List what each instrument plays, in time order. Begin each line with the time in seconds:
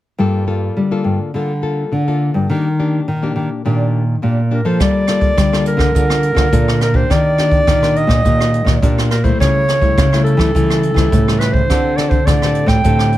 0.18 nylon-string guitar G2 G3 A#3 F4 A4
0.47 nylon-string guitar A#3 F4 A4
0.77 nylon-string guitar D3 G3
0.91 nylon-string guitar A#3 F4 A4
1.04 nylon-string guitar G2
1.34 nylon-string guitar D3 G3 A#3 F4 A4
1.62 nylon-string guitar A#3 F4 A4
1.92 nylon-string guitar D3
2.07 nylon-string guitar A#3 F4 A4
2.34 nylon-string guitar G2
2.50 nylon-string guitar D#3 A#3 D4 G4
2.79 nylon-string guitar A#3 D4 G4
3.08 nylon-string guitar A#2 D#3
3.23 nylon-string guitar A#3 D4 G4
3.36 nylon-string guitar D#3
3.65 nylon-string guitar A#2 D#3 A#3 D4 G4
4.22 nylon-string guitar A#2 A#3 D4 G4
4.51 nylon-string guitar A#3 D4 G4, clarinet A#4
4.65 nylon-string guitar F3 A#3 F4 A4, clarinet C5
4.80 nylon-string guitar G3, clarinet D5, kick, cross-stick, closed hi-hat
5.07 nylon-string guitar A#3 F4 A4, cross-stick, closed hi-hat
5.21 kick, closed hi-hat
5.37 nylon-string guitar D3 G3, kick, cross-stick, closed hi-hat
5.53 nylon-string guitar A#3 F4 A4, cross-stick, closed hi-hat
5.66 clarinet A#4, closed hi-hat
5.77 nylon-string guitar D3, kick, cross-stick
5.95 nylon-string guitar D3 G3 A#3 F4, kick, closed hi-hat
6.10 cross-stick, closed hi-hat
6.23 closed hi-hat
6.35 nylon-string guitar D3 A#3 F4 A4, kick, cross-stick, closed hi-hat
6.52 nylon-string guitar A#2 D3 A#3 F4 A4, kick, closed hi-hat
6.68 cross-stick
6.81 clarinet A#4, cross-stick, closed hi-hat
6.93 nylon-string guitar A#3 D4 G4, clarinet C5, kick
7.10 nylon-string guitar D#3, clarinet D5, kick, cross-stick, closed hi-hat
7.38 nylon-string guitar A#3 D4 G4, cross-stick, closed hi-hat
7.51 kick, closed hi-hat
7.67 nylon-string guitar A#2 D#3, kick, cross-stick, closed hi-hat
7.83 nylon-string guitar A#3 D4 G4, cross-stick
7.96 clarinet D#5, closed hi-hat
8.07 nylon-string guitar A#2, kick, cross-stick, closed hi-hat
8.25 nylon-string guitar A#2 D#3 A#3 G4, kick, closed hi-hat
8.40 cross-stick, closed hi-hat
8.54 closed hi-hat
8.65 nylon-string guitar A#2, kick, cross-stick
8.82 nylon-string guitar A#2 A#3 D4 G4, kick, closed hi-hat
8.98 cross-stick, closed hi-hat
9.11 clarinet A#4, cross-stick, closed hi-hat
9.24 nylon-string guitar G3 A3 E4, clarinet C5, kick, closed hi-hat
9.40 nylon-string guitar C#3, clarinet C#5, kick, cross-stick, closed hi-hat
9.68 cross-stick, closed hi-hat
9.81 nylon-string guitar G3 A3 E4, kick, closed hi-hat
9.98 nylon-string guitar C#3, kick, cross-stick, closed hi-hat
10.13 nylon-string guitar G3 A3 E4, cross-stick, closed hi-hat
10.24 clarinet A4, closed hi-hat
10.37 nylon-string guitar E3 G3 A3 E4, kick, cross-stick
10.55 nylon-string guitar C#3 E3 G3 A3 E4, kick, closed hi-hat
10.70 cross-stick, closed hi-hat
10.83 closed hi-hat
10.94 nylon-string guitar E3 G3 A3, kick, cross-stick, closed hi-hat
10.98 nylon-string guitar E4
11.12 nylon-string guitar A2 C#3, kick, closed hi-hat
11.28 nylon-string guitar G3 A3 E4, cross-stick
11.39 clarinet B4, cross-stick, closed hi-hat
11.53 clarinet C5, kick
11.70 nylon-string guitar D3 C4 G4 A4, kick, cross-stick, closed hi-hat
11.96 nylon-string guitar C4 G4 A4, clarinet D5, cross-stick, closed hi-hat
12.09 clarinet C5, kick, closed hi-hat
12.26 nylon-string guitar A2 D3, clarinet D5, kick, cross-stick, closed hi-hat
12.42 nylon-string guitar C4 G4 A4, cross-stick
12.55 closed hi-hat
12.66 nylon-string guitar A2, clarinet G5, kick, cross-stick, closed hi-hat
12.84 nylon-string guitar A2 D3 C4 G4 A4, kick, closed hi-hat
12.99 cross-stick, closed hi-hat
13.12 closed hi-hat